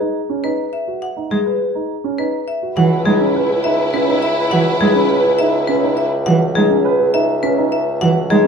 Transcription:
0.00 0.19 D#4 soft
0.29 0.48 C#4 soft
0.44 0.63 D#4 soft
0.44 0.63 B4 medium
0.73 0.92 E5 soft
0.88 1.06 F#4 soft
1.02 1.21 F#5 soft
1.17 1.36 D#4 soft
1.31 1.42 G#3 soft
1.31 1.50 G#4 soft
1.46 1.65 B4 medium
1.75 1.94 D#4 soft
2.04 2.23 C#4 soft
2.18 2.38 D#4 soft
2.18 2.37 B4 soft
2.48 2.67 E5 soft
2.62 2.75 F#4 soft
2.76 8.47 C#2 medium
2.76 2.88 E3 medium
2.76 6.08 E4 medium
2.76 2.96 F#4 medium
2.76 6.08 B4 medium
2.76 2.96 F#5 medium
3.05 3.16 G#3 medium
3.05 3.25 D#4 medium
3.05 3.25 G#4 medium
3.21 3.40 C#4 medium
3.35 3.54 B4 medium
3.50 3.69 G#4 medium
3.64 3.83 D#4 medium
3.64 3.83 E5 medium
3.94 4.12 C#4 medium
3.94 4.12 B4 medium
4.08 4.27 D#4 medium
4.22 4.41 E5 medium
4.51 4.62 E3 medium
4.51 4.71 F#4 medium
4.51 4.70 F#5 medium
4.81 4.92 G#3 medium
4.81 5.00 D#4 soft
4.81 5.00 G#4 medium
4.96 5.14 C#4 medium
5.10 5.29 B4 medium
5.25 5.44 G#4 medium
5.39 5.58 D#4 medium
5.39 5.58 E5 medium
5.67 5.87 C#4 medium
5.67 5.87 B4 medium
5.83 6.02 D#4 medium
5.97 6.16 E5 medium
6.26 6.37 E3 medium
6.26 6.45 F#4 medium
6.26 6.45 F#5 medium
6.55 6.67 G#3 medium
6.55 6.75 D#4 medium
6.55 6.74 G#4 medium
6.70 6.89 C#4 medium
6.85 7.04 B4 medium
6.99 7.18 G#4 medium
7.14 7.33 D#4 medium
7.14 7.33 E5 medium
7.43 7.62 C#4 medium
7.43 7.62 B4 medium
7.58 7.76 D#4 medium
7.72 7.91 E5 medium
8.01 8.12 E3 medium
8.01 8.20 F#4 medium
8.01 8.20 F#5 medium
8.30 8.41 G#3 medium
8.30 8.47 D#4 medium
8.30 8.47 G#4 medium

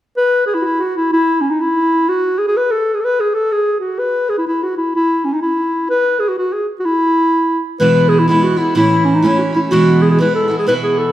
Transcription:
0.17 0.44 B4 loud
0.47 0.56 G#4 medium
0.54 0.61 E4 medium
0.62 0.81 E4 medium
0.62 0.65 F#4 medium
0.79 0.96 F#4 medium
0.94 1.12 E4 medium
1.13 1.43 E4 loud
1.41 1.52 C#4 medium
1.50 1.62 D#4 medium
1.61 2.10 E4 medium
2.09 2.40 F#4 loud
2.38 2.47 G#4 medium
2.48 2.58 G#4 medium
2.57 2.73 B4 medium
2.71 2.96 A4 medium
2.94 3.02 G#4 medium
3.01 3.06 A4 medium
3.05 3.22 B4 loud
3.20 3.36 G#4 medium
3.34 3.54 A4 medium
3.52 3.79 G#4 medium
3.80 4.01 F#4 medium
3.99 4.31 B4 medium
4.30 4.37 G#4 medium
4.38 4.46 E4 medium
4.47 4.65 E4 medium
4.63 4.77 F#4 medium
4.77 4.94 E4 medium
4.96 5.26 E4 medium
5.25 5.35 C#4 medium
5.33 5.41 D#4 medium
5.42 5.86 E4 medium
5.90 6.21 B4 loud
6.20 6.30 G#4 medium
6.29 6.38 F#4 medium
6.38 6.54 F#4 medium
6.53 6.67 G#4 medium
6.80 6.87 F#4 medium
6.85 7.62 E4 loud
7.80 8.28 E2 medium
7.80 8.28 B2 medium
7.80 8.27 E3 medium
7.80 8.28 G#3 medium
7.80 8.29 B3 medium
7.80 8.31 E4 medium
7.80 8.10 B4 loud
8.09 8.21 G#4 medium
8.19 8.28 E4 medium
8.28 8.57 E3 medium
8.28 8.57 G#3 medium
8.28 8.56 B3 medium
8.28 8.45 E4 medium
8.28 8.55 E4 medium
8.43 8.60 F#4 medium
8.56 8.74 E3 soft
8.56 8.75 G#3 soft
8.56 8.76 B3 soft
8.56 8.76 E4 soft
8.56 8.76 E4 medium
8.75 9.23 A2 medium
8.75 9.21 E3 medium
8.75 9.22 A3 medium
8.75 9.23 C#4 medium
8.75 9.07 E4 medium
8.75 9.25 E4 medium
9.05 9.16 C#4 medium
9.15 9.26 D#4 medium
9.23 9.53 E3 medium
9.23 9.53 A3 medium
9.23 9.53 C#4 medium
9.23 9.40 E4 medium
9.23 9.51 E4 medium
9.39 9.41 F#4 medium
9.53 9.72 A3 soft
9.53 9.73 C#4 soft
9.53 9.72 E4 soft
9.53 9.58 E4 medium
9.71 10.19 E2 medium
9.71 10.19 B2 medium
9.71 10.17 E3 medium
9.71 10.19 G#3 medium
9.71 10.21 B3 medium
9.71 10.20 E4 medium
9.71 10.04 F#4 loud
10.02 10.10 G#4 medium
10.11 10.19 G#4 medium
10.19 10.48 E3 medium
10.19 10.49 G#3 medium
10.19 10.48 B3 medium
10.19 10.47 E4 medium
10.19 10.34 B4 medium
10.35 10.57 A4 medium
10.48 10.66 E3 soft
10.48 10.68 G#3 soft
10.48 10.67 B3 soft
10.48 10.67 E4 soft
10.59 10.67 G#4 medium
10.67 11.12 B2 medium
10.67 11.12 E3 medium
10.67 11.12 B3 medium
10.67 11.12 E4 medium
10.67 11.12 F#4 medium
10.67 10.74 B4 medium
10.83 11.00 G#4 medium
10.98 11.12 A4 medium

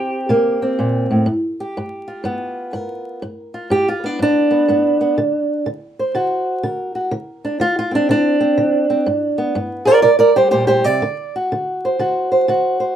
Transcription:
0.00 0.27 C3 medium
0.00 0.61 C4 soft
0.00 1.12 G4 loud
0.29 0.75 C3 medium
0.29 1.25 A#3 soft
0.62 1.26 C4 soft
0.79 1.10 A#2 medium
1.10 1.28 A2 medium
1.26 1.72 G2 medium
1.60 2.75 G4 soft
1.77 2.22 G2 medium
2.08 3.20 F4 soft
2.24 2.70 G2 medium
2.24 3.20 B3 medium
2.73 3.19 G2 medium
2.73 3.71 A#4 medium
3.22 3.68 G2 medium
3.54 3.87 F4 soft
3.70 4.16 G2 medium
3.70 3.88 G4 medium
3.88 4.06 F4 medium
4.04 4.49 B3 soft
4.04 4.21 D4 medium
4.19 4.65 G2 medium
4.19 5.67 D4 loud
4.51 4.68 B3 soft
4.68 5.14 G2 medium
4.68 4.99 B3 soft
5.01 5.16 B3 soft
5.18 5.63 D3 medium
5.66 6.11 D3 medium
5.99 6.66 C5 soft
6.15 6.60 D3 medium
6.15 6.94 F#4 soft
6.63 7.09 D3 medium
6.63 7.62 A#4 medium
6.95 7.10 F#4 soft
7.11 7.57 D3 medium
7.45 7.61 D4 soft
7.60 8.06 D3 medium
7.60 7.77 F4 medium
7.79 7.94 F4 medium
7.91 8.39 C4 soft
7.91 8.09 D4 medium
8.09 8.55 D3 medium
8.09 9.56 D4 loud
8.40 8.89 C4 soft
8.57 9.03 D3 medium
8.90 9.05 C4 soft
9.06 9.52 G2 medium
9.38 10.02 B3 soft
9.55 10.01 G2 medium
9.85 10.03 F4 soft
9.85 10.01 A#4 medium
9.85 10.01 D5 medium
10.02 10.49 C3 medium
10.02 10.09 A#4 medium
10.02 10.18 D5 medium
10.19 10.30 A#4 medium
10.19 10.36 D5 medium
10.36 11.02 G3 soft
10.36 10.50 G4 medium
10.36 10.50 C5 medium
10.51 10.84 A#2 medium
10.51 10.66 G4 medium
10.51 10.67 C5 medium
10.67 10.84 G4 medium
10.67 10.84 C5 medium
10.84 11.02 C3 medium
10.84 11.34 D5 medium
11.02 11.47 D3 medium
11.36 11.99 F#4 soft
11.52 11.96 D3 medium
11.85 12.30 C5 soft
11.99 12.45 D3 medium
11.99 12.48 F#4 soft
12.32 12.79 C5 soft
12.48 12.93 D3 medium
12.48 12.95 F#4 medium
12.80 12.95 C5 soft

